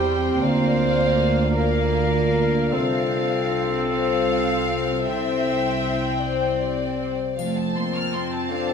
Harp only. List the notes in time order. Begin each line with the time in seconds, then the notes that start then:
Already playing: E3 G3 G4 C5
0.05 C4
0.43 D3
0.81 A#3
1.19 D4
1.56 A#4
1.94 F4
2.33 A#3
2.72 C3
3.11 C4
3.50 F4
3.89 C5
4.30 F4
4.69 C4
5.07 C3
5.46 C4
5.85 E4
6.22 C5
6.61 G4
7.00 C4
7.38 F3
7.77 C4
8.15 F4
8.52 C5